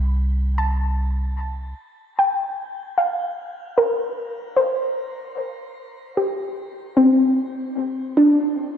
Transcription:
0.00 1.74 C2 medium
0.58 2.14 A5 soft
2.19 3.91 G5 medium
2.98 4.54 F5 medium
3.78 4.54 A#4 medium
4.56 6.30 C5 medium
6.17 6.94 G4 medium
6.97 8.70 C4 medium
8.17 8.77 D4 medium

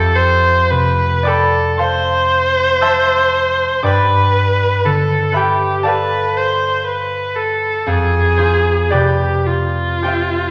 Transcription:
0.00 3.58 F2 medium
0.00 1.05 F4 soft
0.00 3.55 G4 medium
0.00 0.18 A4 medium
0.00 1.55 A4 soft
0.00 1.78 C5 medium
0.00 2.81 E5 medium
0.00 1.25 G5 medium
0.16 0.72 C5 medium
0.70 3.89 C3 soft
0.70 1.29 B4 medium
1.23 3.83 D5 medium
1.23 3.83 G5 medium
1.23 2.14 D6 medium
1.27 1.81 A4 medium
1.27 3.83 B5 medium
1.78 3.89 C5 soft
1.78 3.85 C5 medium
1.78 5.69 F5 soft
1.78 2.81 A5 soft
1.78 2.81 C6 medium
2.81 3.89 E5 medium
2.81 5.82 A5 medium
2.81 3.89 C6 medium
2.81 4.55 E6 medium
3.82 7.72 G2 soft
3.82 4.87 B4 medium
3.82 5.83 D5 medium
3.82 5.33 G5 soft
3.82 5.32 B5 medium
3.82 7.73 D6 medium
4.84 7.91 D3 soft
4.84 5.37 A4 soft
5.32 5.89 G4 soft
5.32 7.91 B4 soft
5.32 7.90 E5 soft
5.32 7.90 B5 medium
5.37 7.91 G5 soft
5.83 7.91 A4 soft
5.83 8.89 D5 soft
5.83 9.75 F5 soft
5.83 7.90 A5 medium
5.87 6.39 B4 medium
6.37 6.86 C5 medium
6.87 7.37 B4 soft
7.36 7.89 A4 soft
7.86 10.51 F2 soft
7.86 8.94 G#4 medium
8.38 10.51 F4 soft
8.38 10.51 G#4 soft
8.38 10.04 C5 medium
8.90 10.51 C3 soft
8.90 10.02 G4 medium
8.90 9.48 G4 soft
8.90 10.51 B4 soft
8.90 10.51 D5 medium
9.47 10.51 F4 soft
10.02 10.51 G4 medium
10.02 10.51 C5 medium
10.02 10.51 G5 medium
10.08 10.51 E5 soft

